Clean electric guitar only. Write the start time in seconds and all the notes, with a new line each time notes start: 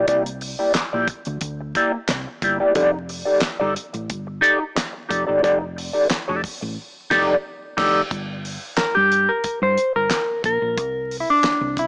0.07 A#3 E4 G4 D5
0.25 muted clean electric guitar stroke
0.42 muted clean electric guitar stroke
0.59 A#3 E4 G4 D5
0.74 muted clean electric guitar stroke
0.93 A#3 E4 G4 D5
1.27 muted clean electric guitar stroke
1.61 muted clean electric guitar stroke
1.75 A#3 E4 G4 D5
1.94 muted clean electric guitar stroke
2.10 muted clean electric guitar stroke
2.27 muted clean electric guitar stroke
2.43 A#3 E4 G4 D5
2.60 A#3 E4 G4 D5
2.75 D#4 G4 A4 D5
2.94 muted clean electric guitar stroke
3.09 muted clean electric guitar stroke
3.25 D#4 G4 A4 D5
3.60 D#4 G4 A4 D5
3.93 muted clean electric guitar stroke
4.27 muted clean electric guitar stroke
4.41 D#4 G4 A4 D5
4.61 muted clean electric guitar stroke
4.75 muted clean electric guitar stroke
4.93 muted clean electric guitar stroke
5.09 D#4 G4 A4 D5
5.27 D#4 G4 A4 D5
5.42 D#4 G4 A4 D5
5.61 muted clean electric guitar stroke
5.76 muted clean electric guitar stroke
5.93 D#4 G4 A4 D5
6.28 D#4 G4 A4 D5
6.61 muted clean electric guitar stroke
7.10 D#4 G4 A4 D5
7.77 D#4 G4 A4 D5
8.77 A#4
8.95 G4
9.29 A#4
9.63 C5
9.96 A#4
10.45 A#4
11.20 E4
11.30 D4
11.79 E4